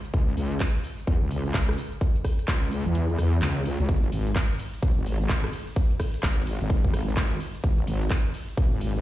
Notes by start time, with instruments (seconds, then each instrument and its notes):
0.05 closed hi-hat, tambourine
0.14 wobble bass C#2, kick, closed hi-hat, tambourine
0.28 closed hi-hat, tambourine
0.37 wobble bass C#2, open hi-hat, tambourine
0.52 closed hi-hat, tambourine
0.60 kick, clap, closed hi-hat, tambourine
0.75 closed hi-hat, tambourine
0.84 open hi-hat, tambourine
0.98 closed hi-hat, tambourine
1.07 wobble bass E2, kick, closed hi-hat, tambourine
1.22 wobble bass C#2, tambourine
1.31 open hi-hat, tambourine
1.46 tambourine
1.54 wobble bass C#2, kick, clap, closed hi-hat, tambourine
1.69 cross-stick, closed hi-hat, tambourine
1.78 open hi-hat, tambourine
1.92 closed hi-hat, tambourine
2.01 kick, closed hi-hat, tambourine
2.16 closed hi-hat, tambourine
2.25 kick, cross-stick, open hi-hat, tambourine
2.39 closed hi-hat, tambourine
2.48 wobble bass C#2, kick, clap, closed hi-hat, tambourine
2.63 closed hi-hat, tambourine
2.71 open hi-hat, tambourine
2.86 wobble bass E2, closed hi-hat, tambourine
2.95 closed hi-hat, tambourine
3.10 closed hi-hat, tambourine
3.18 wobble bass E2, cross-stick, open hi-hat, tambourine
3.33 closed hi-hat, tambourine
3.42 wobble bass C#2, clap, closed hi-hat, tambourine
3.57 closed hi-hat, tambourine
3.65 open hi-hat, tambourine
3.80 wobble bass C#2, closed hi-hat, tambourine
3.89 wobble bass G#1, kick, closed hi-hat, ride, tambourine
4.03 closed hi-hat, tambourine
4.12 wobble bass G#1, open hi-hat, ride, tambourine
4.27 closed hi-hat, tambourine
4.36 kick, clap, closed hi-hat, ride, tambourine
4.50 closed hi-hat, tambourine
4.59 open hi-hat, ride, tambourine
4.74 closed hi-hat, tambourine
4.83 wobble bass B1, kick, closed hi-hat, ride, tambourine
4.97 wobble bass G#1, tambourine
5.06 open hi-hat, ride, tambourine
5.21 tambourine
5.29 wobble bass G#1, kick, clap, closed hi-hat, ride, tambourine
5.44 cross-stick, closed hi-hat, tambourine
5.53 open hi-hat, ride, tambourine
5.67 closed hi-hat, tambourine
5.76 kick, closed hi-hat, ride, tambourine
5.91 closed hi-hat, tambourine
6.00 kick, cross-stick, open hi-hat, ride, tambourine
6.14 closed hi-hat, tambourine
6.23 wobble bass G#1, kick, clap, closed hi-hat, ride, tambourine
6.38 closed hi-hat, tambourine
6.47 open hi-hat, ride, tambourine
6.61 wobble bass G#1, closed hi-hat, tambourine
6.70 kick, closed hi-hat, ride, tambourine
6.84 kick, tambourine
6.93 wobble bass G#1, cross-stick, open hi-hat, ride, tambourine
7.09 tambourine
7.17 wobble bass G#1, kick, clap, closed hi-hat, ride, tambourine
7.31 closed hi-hat, tambourine
7.40 open hi-hat, ride, tambourine
7.55 closed hi-hat, tambourine
7.64 wobble bass G#1, kick, closed hi-hat, ride, tambourine
7.78 closed hi-hat, tambourine
7.87 wobble bass G#1, open hi-hat, ride, tambourine
8.02 closed hi-hat, tambourine
8.11 kick, clap, closed hi-hat, ride, tambourine
8.25 closed hi-hat, tambourine
8.34 open hi-hat, ride, tambourine
8.49 closed hi-hat, tambourine
8.57 wobble bass B1, kick, closed hi-hat, ride, tambourine
8.72 wobble bass G#1, tambourine
8.81 open hi-hat, ride, tambourine
8.96 tambourine